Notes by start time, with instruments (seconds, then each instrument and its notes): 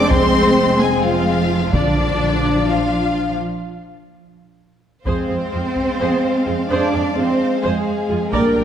Already playing: double bass section F1, french horn section G#3 C4, viola section G#3 C4, cello section D4, violin section D6
0.09 cello section C4, violin section C5 C6, taiko
0.79 cello section G#3, violin section G#4 G#5
1.03 cello section F3, violin section F4 F5
1.73 double bass section A#1, cello section D3, viola section F3 D4, french horn section F3 D4, violin section D4 D5, taiko
2.67 cello section F3, violin section F4 F5
5.05 double bass section F2, french horn section G#3 C4, cello section C4, viola section G#4 C5, violin section C5 F5, taiko
5.29 double bass section F2, viola section G#4
5.53 double bass section F2, viola section F4 G#4
5.76 taiko
6.00 double bass section F2, viola section G#4 C5
6.46 double bass section F2, viola section F4 G#4
6.70 double bass section F2, cello section D4, viola section G#4 C5, violin section D5
6.92 double bass section F2, viola section G#4
7.16 double bass section F2, cello section C4, viola section F4 G#4, violin section C5
7.63 double bass section F2, cello section G#3, viola section G#4 C5, violin section G#4
8.10 double bass section F2, viola section F4 G#4
8.31 double bass section A#1, french horn section G3 D4, cello section A#3, viola section A#4 D5, violin section A#4 G5, taiko
8.55 double bass section A#1, viola section A#4